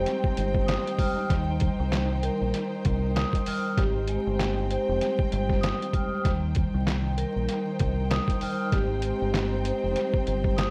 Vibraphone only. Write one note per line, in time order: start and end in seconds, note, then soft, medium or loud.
0.00 1.30 G#3 medium
0.00 1.30 G4 medium
0.00 1.30 C5 medium
0.07 0.36 G3 medium
0.37 1.28 G3 medium
0.66 1.29 D#6 loud
0.99 1.30 F6 loud
1.29 1.60 G3 medium
1.62 1.91 G3 medium
1.92 2.52 G3 medium
2.23 3.78 A#4 loud
2.54 2.85 G3 medium
2.86 3.78 G3 medium
3.15 3.77 D#6 loud
3.48 3.78 F6 loud
3.77 6.25 G4 medium
4.09 6.25 G#3 medium
4.71 6.25 C5 medium
5.02 5.31 G3 medium
5.32 6.22 G3 medium
5.61 6.24 D#6 loud
5.94 6.25 F6 loud
6.24 6.55 G3 medium
6.57 6.85 G3 medium
6.87 7.47 G3 medium
7.18 8.72 A#4 loud
7.49 7.79 G3 medium
7.80 8.73 G3 medium
8.10 8.72 D#6 loud
8.43 8.73 F6 loud
8.72 10.70 G4 medium
9.04 10.70 G#3 medium
9.66 10.70 C5 medium
9.97 10.26 G3 medium
10.27 10.70 G3 medium
10.56 10.70 D#6 loud